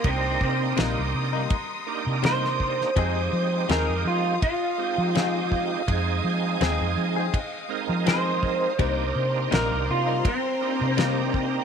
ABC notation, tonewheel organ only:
X:1
M:4/4
L:1/8
Q:"Swing 16ths" 1/4=82
K:Cm
V:1 name="Tonewheel organ"
[B,DEG]4 z [B,DEG]3 | [A,CEG]4 z [A,CEG]3 | [A,CEA]4 z [A,CEB]3 | [B,DEG]4 z [B,DEG]3 |]